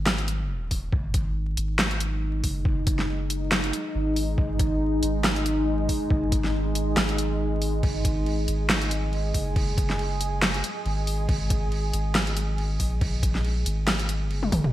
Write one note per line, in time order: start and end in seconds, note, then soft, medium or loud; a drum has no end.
0.00 0.69 G#1 loud
0.06 snare loud
0.18 closed hi-hat soft
0.28 closed hi-hat medium
0.71 0.91 D#1 medium
0.71 kick medium
0.71 open hi-hat loud
0.93 1.56 G#1 loud
0.93 14.73 G#3 medium
0.93 7.86 D#4 medium
0.93 kick loud
1.14 kick loud
1.14 closed hi-hat medium
1.57 2.42 G#1 loud
1.57 closed hi-hat medium
1.79 snare loud
1.91 closed hi-hat soft
2.00 closed hi-hat medium
2.44 3.72 F#1 loud
2.44 kick medium
2.44 open hi-hat loud
2.65 kick loud
2.87 kick loud
2.87 closed hi-hat medium
2.99 snare soft
3.30 closed hi-hat medium
3.52 snare loud
3.64 closed hi-hat soft
3.73 closed hi-hat medium
3.95 4.36 G#1 loud
4.16 open hi-hat loud
4.38 5.01 G#1 loud
4.38 kick loud
4.59 kick loud
4.59 closed hi-hat medium
5.03 5.88 G#1 loud
5.03 closed hi-hat medium
5.24 snare loud
5.36 closed hi-hat soft
5.46 closed hi-hat medium
5.89 kick medium
5.89 open hi-hat medium
6.10 6.95 G#1 loud
6.10 kick loud
6.32 kick loud
6.32 closed hi-hat medium
6.44 snare soft
6.75 closed hi-hat medium
6.97 7.82 G#1 loud
6.97 snare loud
7.09 closed hi-hat soft
7.18 closed hi-hat medium
7.62 open hi-hat medium
7.83 8.46 G#1 loud
7.83 14.73 G#4 medium
7.83 kick loud
7.83 crash medium
8.05 kick loud
8.05 closed hi-hat medium
8.26 crash soft
8.48 9.33 G#1 medium
8.48 closed hi-hat medium
8.70 snare loud
8.70 crash medium
8.82 closed hi-hat soft
8.91 closed hi-hat medium
9.13 crash soft
9.34 10.62 F#1 medium
9.34 kick medium
9.34 open hi-hat medium
9.56 kick loud
9.56 crash medium
9.78 kick loud
9.78 closed hi-hat medium
9.90 snare soft
9.99 crash soft
10.21 closed hi-hat medium
10.42 snare loud
10.42 crash medium
10.54 closed hi-hat soft
10.64 closed hi-hat medium
10.85 11.27 G#1 loud
10.85 crash soft
11.07 open hi-hat medium
11.29 11.92 G#1 medium
11.29 kick loud
11.29 crash medium
11.50 kick loud
11.50 closed hi-hat medium
11.72 crash soft
11.93 12.78 G#1 loud
11.93 closed hi-hat medium
12.15 snare loud
12.15 crash medium
12.27 closed hi-hat soft
12.37 closed hi-hat medium
12.58 crash soft
12.80 13.64 A#1 loud
12.80 kick medium
12.80 open hi-hat loud
13.01 kick loud
13.01 crash medium
13.23 kick loud
13.23 closed hi-hat medium
13.35 snare soft
13.45 crash soft
13.66 14.26 G#1 medium
13.66 closed hi-hat medium
13.88 snare loud
13.88 crash medium
14.00 closed hi-hat soft
14.09 closed hi-hat medium
14.26 14.51 G1 medium
14.31 crash soft
14.43 high tom medium
14.52 14.72 D#1 medium
14.52 kick medium
14.52 open hi-hat loud
14.52 mid tom medium
14.64 mid tom medium